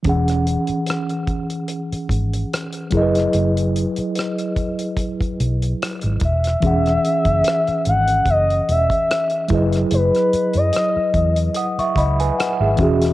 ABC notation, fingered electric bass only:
X:1
M:4/4
L:1/16
Q:"Swing 16ths" 1/4=73
K:E
V:1 name="Fingered electric bass" clef=bass
E,,,3 z6 z G,,,2 z2 F,,,2 | F,,,3 z6 z B,,,2 z G,,, E,,,2 | E,,,2 z F,,, z2 G,,,2 F,,,2 E,,, z3 F,,,2 | F,,, z2 F,, z2 E,,2 z2 C,,2 z G,,, E,,,2 |]